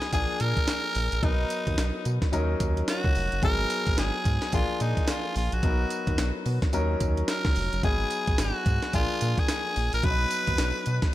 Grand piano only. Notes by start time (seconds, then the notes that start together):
Already playing: F#3 B3 D#4 G#4
0.12 F3 A#3 D4 G#4
1.22 F#3 B3 D#4 A#4
2.32 F#3 C#4 D#4 A#4
3.42 F#3 B3 D#4 G#4
4.53 F3 A#3 D4 G#4
5.63 F#3 B3 D#4 A#4
6.73 F#3 C#4 D#4 A#4
7.83 F#3 B3 D#4 G#4
8.93 F3 A#3 D4 G#4
10.03 F#3 B3 C#4 B4
10.10 D#4